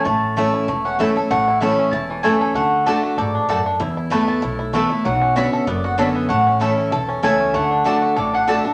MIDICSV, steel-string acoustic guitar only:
0, 0, Header, 1, 2, 480
1, 0, Start_track
1, 0, Key_signature, 3, "major"
1, 0, Tempo, 312012
1, 89, Time_signature, 4, 2, 24, 8
1, 13438, End_track
2, 0, Start_track
2, 0, Title_t, "Steel-string acoustic guitar"
2, 0, Program_c, 0, 25
2, 80, Note_on_c, 0, 45, 88
2, 559, Note_on_c, 0, 52, 82
2, 570, Note_on_c, 0, 57, 88
2, 582, Note_on_c, 0, 61, 94
2, 588, Note_on_c, 0, 64, 101
2, 1001, Note_off_c, 0, 45, 0
2, 1022, Note_off_c, 0, 52, 0
2, 1028, Note_off_c, 0, 57, 0
2, 1034, Note_off_c, 0, 61, 0
2, 1037, Note_off_c, 0, 64, 0
2, 1046, Note_on_c, 0, 40, 88
2, 1520, Note_on_c, 0, 52, 82
2, 1533, Note_on_c, 0, 57, 94
2, 1539, Note_on_c, 0, 61, 90
2, 1549, Note_on_c, 0, 64, 94
2, 1760, Note_off_c, 0, 64, 0
2, 1771, Note_off_c, 0, 52, 0
2, 1778, Note_off_c, 0, 57, 0
2, 1778, Note_on_c, 0, 64, 58
2, 1781, Note_off_c, 0, 61, 0
2, 1816, Note_on_c, 0, 61, 47
2, 1964, Note_off_c, 0, 40, 0
2, 1997, Note_off_c, 0, 64, 0
2, 2011, Note_on_c, 0, 45, 91
2, 2016, Note_off_c, 0, 61, 0
2, 2477, Note_on_c, 0, 52, 88
2, 2488, Note_on_c, 0, 57, 91
2, 2497, Note_on_c, 0, 61, 102
2, 2504, Note_on_c, 0, 64, 105
2, 2926, Note_off_c, 0, 45, 0
2, 2941, Note_off_c, 0, 52, 0
2, 2947, Note_off_c, 0, 57, 0
2, 2952, Note_off_c, 0, 61, 0
2, 2955, Note_off_c, 0, 64, 0
2, 2965, Note_on_c, 0, 40, 89
2, 3439, Note_on_c, 0, 52, 88
2, 3453, Note_on_c, 0, 57, 85
2, 3461, Note_on_c, 0, 61, 90
2, 3469, Note_on_c, 0, 64, 90
2, 3883, Note_off_c, 0, 40, 0
2, 3903, Note_off_c, 0, 52, 0
2, 3910, Note_off_c, 0, 57, 0
2, 3914, Note_off_c, 0, 61, 0
2, 3918, Note_off_c, 0, 64, 0
2, 3931, Note_on_c, 0, 50, 93
2, 4390, Note_off_c, 0, 50, 0
2, 4408, Note_on_c, 0, 50, 92
2, 4419, Note_on_c, 0, 57, 91
2, 4428, Note_on_c, 0, 62, 93
2, 4440, Note_on_c, 0, 66, 96
2, 4867, Note_off_c, 0, 50, 0
2, 4873, Note_off_c, 0, 57, 0
2, 4877, Note_off_c, 0, 62, 0
2, 4883, Note_off_c, 0, 66, 0
2, 4894, Note_on_c, 0, 44, 90
2, 5350, Note_off_c, 0, 44, 0
2, 5363, Note_on_c, 0, 42, 87
2, 5825, Note_off_c, 0, 42, 0
2, 5841, Note_on_c, 0, 40, 94
2, 6312, Note_on_c, 0, 52, 86
2, 6327, Note_on_c, 0, 57, 97
2, 6332, Note_on_c, 0, 59, 99
2, 6346, Note_on_c, 0, 64, 105
2, 6761, Note_off_c, 0, 40, 0
2, 6779, Note_off_c, 0, 52, 0
2, 6787, Note_off_c, 0, 57, 0
2, 6789, Note_off_c, 0, 59, 0
2, 6796, Note_off_c, 0, 64, 0
2, 6801, Note_on_c, 0, 45, 89
2, 7276, Note_on_c, 0, 52, 83
2, 7285, Note_on_c, 0, 57, 91
2, 7300, Note_on_c, 0, 59, 102
2, 7306, Note_on_c, 0, 64, 91
2, 7513, Note_off_c, 0, 64, 0
2, 7530, Note_off_c, 0, 52, 0
2, 7531, Note_on_c, 0, 64, 60
2, 7534, Note_off_c, 0, 57, 0
2, 7542, Note_off_c, 0, 59, 0
2, 7559, Note_on_c, 0, 59, 49
2, 7722, Note_off_c, 0, 45, 0
2, 7754, Note_off_c, 0, 64, 0
2, 7768, Note_off_c, 0, 59, 0
2, 7771, Note_on_c, 0, 47, 89
2, 8239, Note_on_c, 0, 50, 81
2, 8244, Note_on_c, 0, 59, 95
2, 8258, Note_on_c, 0, 61, 98
2, 8267, Note_on_c, 0, 66, 99
2, 8687, Note_off_c, 0, 47, 0
2, 8703, Note_off_c, 0, 50, 0
2, 8705, Note_off_c, 0, 59, 0
2, 8712, Note_off_c, 0, 61, 0
2, 8717, Note_off_c, 0, 66, 0
2, 8726, Note_on_c, 0, 42, 93
2, 9195, Note_on_c, 0, 50, 85
2, 9203, Note_on_c, 0, 59, 82
2, 9215, Note_on_c, 0, 61, 93
2, 9219, Note_on_c, 0, 66, 88
2, 9644, Note_off_c, 0, 42, 0
2, 9661, Note_off_c, 0, 50, 0
2, 9665, Note_off_c, 0, 59, 0
2, 9671, Note_off_c, 0, 61, 0
2, 9673, Note_off_c, 0, 66, 0
2, 9692, Note_on_c, 0, 45, 94
2, 10148, Note_on_c, 0, 52, 82
2, 10165, Note_on_c, 0, 57, 90
2, 10174, Note_on_c, 0, 61, 97
2, 10184, Note_on_c, 0, 64, 95
2, 10607, Note_off_c, 0, 45, 0
2, 10618, Note_off_c, 0, 52, 0
2, 10627, Note_off_c, 0, 57, 0
2, 10631, Note_off_c, 0, 61, 0
2, 10636, Note_off_c, 0, 64, 0
2, 10647, Note_on_c, 0, 40, 93
2, 11121, Note_on_c, 0, 52, 83
2, 11125, Note_on_c, 0, 57, 97
2, 11142, Note_on_c, 0, 61, 96
2, 11147, Note_on_c, 0, 64, 102
2, 11565, Note_off_c, 0, 40, 0
2, 11584, Note_off_c, 0, 52, 0
2, 11586, Note_off_c, 0, 57, 0
2, 11595, Note_off_c, 0, 61, 0
2, 11597, Note_off_c, 0, 64, 0
2, 11602, Note_on_c, 0, 50, 91
2, 12048, Note_off_c, 0, 50, 0
2, 12067, Note_on_c, 0, 50, 83
2, 12082, Note_on_c, 0, 57, 88
2, 12093, Note_on_c, 0, 62, 100
2, 12102, Note_on_c, 0, 66, 93
2, 12537, Note_off_c, 0, 50, 0
2, 12545, Note_off_c, 0, 57, 0
2, 12550, Note_off_c, 0, 62, 0
2, 12555, Note_off_c, 0, 66, 0
2, 12563, Note_on_c, 0, 45, 88
2, 13039, Note_on_c, 0, 50, 89
2, 13044, Note_on_c, 0, 57, 88
2, 13057, Note_on_c, 0, 62, 103
2, 13062, Note_on_c, 0, 66, 90
2, 13278, Note_off_c, 0, 66, 0
2, 13292, Note_off_c, 0, 50, 0
2, 13295, Note_off_c, 0, 57, 0
2, 13297, Note_on_c, 0, 66, 54
2, 13301, Note_off_c, 0, 62, 0
2, 13329, Note_on_c, 0, 62, 52
2, 13438, Note_off_c, 0, 45, 0
2, 13438, Note_off_c, 0, 62, 0
2, 13438, Note_off_c, 0, 66, 0
2, 13438, End_track
0, 0, End_of_file